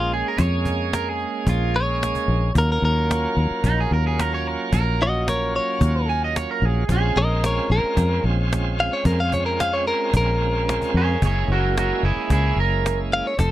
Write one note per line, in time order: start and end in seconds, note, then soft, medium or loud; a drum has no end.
0.00 0.22 A#1 medium
0.00 2.51 G#3 medium
0.00 2.52 A#3 medium
0.00 2.52 C#4 medium
0.00 0.11 F4 medium
0.00 2.53 G#4 medium
0.11 0.26 G#4 medium
0.11 cajon slap soft
0.28 0.41 A#4 medium
0.38 1.25 F2 medium
0.38 0.93 C#5 medium
0.38 cajon bass loud
0.65 cajon bass medium
0.65 cajon slap soft
0.93 1.09 A#4 medium
0.93 cajon slap loud
1.09 1.47 G#4 medium
1.20 cajon slap soft
1.47 2.12 A#1 medium
1.47 1.74 F4 medium
1.47 cajon bass loud
1.74 2.54 C#5 medium
1.74 cajon slap soft
2.03 cajon slap loud
2.15 cajon bass medium
2.28 2.50 A#1 medium
2.28 cajon slap soft
2.54 2.77 D#2 medium
2.54 6.84 F#3 medium
2.54 6.84 A#3 medium
2.54 6.85 C#4 medium
2.54 6.85 F4 medium
2.54 cajon bass loud
2.58 2.70 A#4 medium
2.72 2.84 A#4 medium
2.82 3.26 D#2 medium
2.82 4.42 A#4 medium
2.82 cajon slap soft
3.11 cajon slap loud
3.25 cajon slap soft
3.37 3.48 D#2 medium
3.37 cajon slap soft
3.51 muted fingered electric bass stroke soft
3.64 3.85 A#1 medium
3.64 3.79 D#4 medium
3.64 cajon bass medium
3.80 3.92 G#4 medium
3.91 4.56 D#2 medium
3.91 4.06 A#4 medium
3.91 cajon slap soft
4.07 4.20 G#4 medium
4.19 4.33 A#4 medium
4.19 cajon slap loud
4.34 4.47 C#5 medium
4.45 4.72 A#4 medium
4.45 cajon slap soft
4.73 5.59 A#1 medium
4.73 4.99 A#4 loud
4.73 cajon bass loud
5.00 5.28 F#4 medium
5.00 5.27 D#5 medium
5.00 cajon slap soft
5.28 5.53 A#4 medium
5.28 5.54 C#5 medium
5.28 cajon slap loud
5.42 cajon slap soft
5.54 6.07 C#5 medium
5.54 cajon slap soft
5.81 6.45 D#2 medium
5.81 cajon bass loud
6.09 6.22 G#5 medium
6.09 cajon slap soft
6.24 6.36 D#5 medium
6.36 6.49 C#5 medium
6.36 cajon slap loud
6.51 6.65 A#4 medium
6.62 6.83 A#1 medium
6.62 6.90 G#4 medium
6.62 cajon slap soft
6.87 7.10 A#1 medium
6.87 11.17 G#3 medium
6.87 11.17 C4 medium
6.87 11.18 C#4 medium
6.87 11.18 F4 medium
6.87 cajon bass loud
6.92 7.17 G#4 medium
7.16 7.59 A#1 medium
7.16 7.44 A#4 medium
7.16 7.43 D#5 medium
7.44 7.69 A#4 medium
7.44 7.71 C#5 medium
7.44 cajon slap loud
7.58 cajon slap soft
7.70 7.81 A#1 medium
7.70 8.23 A#4 medium
7.70 cajon slap soft
7.97 8.18 F2 medium
7.97 cajon bass loud
8.24 8.88 A#1 medium
8.24 cajon slap soft
8.53 cajon slap loud
8.80 8.93 F5 medium
8.93 9.05 C#5 medium
9.05 9.91 F2 medium
9.05 9.19 A#4 medium
9.05 cajon bass loud
9.20 9.32 F5 medium
9.32 9.46 C#5 medium
9.32 cajon bass medium
9.46 9.59 A#4 medium
9.60 9.73 F5 medium
9.60 cajon slap loud
9.73 9.86 C#5 medium
9.73 cajon slap soft
9.87 10.13 A#4 medium
9.87 cajon slap soft
10.13 10.78 A#1 medium
10.13 11.20 A#4 medium
10.13 cajon bass loud
10.41 cajon slap soft
10.69 cajon slap medium
10.82 cajon bass medium
10.94 11.16 F2 medium
10.94 11.23 G#4 medium
10.94 11.22 C#5 medium
10.94 cajon slap soft
11.22 11.43 F#1 medium
11.22 13.34 G#3 medium
11.22 13.34 A#3 medium
11.22 13.35 C#4 medium
11.22 13.36 E4 medium
11.22 11.48 G#4 medium
11.22 cajon bass loud
11.26 11.50 C#5 medium
11.48 11.91 F#1 medium
11.48 11.76 F#4 medium
11.48 cajon slap soft
11.53 11.77 A#4 medium
11.77 12.02 F#4 medium
11.77 12.04 A#4 medium
11.77 cajon slap loud
12.03 12.14 F#1 medium
12.03 12.29 E4 medium
12.03 12.30 G#4 medium
12.03 cajon slap soft
12.30 12.51 C#2 medium
12.30 12.56 E4 medium
12.30 12.57 G#4 medium
12.30 cajon bass loud
12.56 13.21 F#1 medium
12.56 12.98 A#4 medium
12.56 cajon slap soft
12.86 cajon slap loud
13.12 13.26 F5 medium
13.12 cajon slap soft
13.27 13.39 C#5 medium
13.37 13.52 F1 medium
13.37 13.52 A3 medium
13.37 13.52 C4 medium
13.37 13.52 D#4 medium
13.37 13.52 F4 medium
13.37 13.52 A4 medium
13.37 cajon bass loud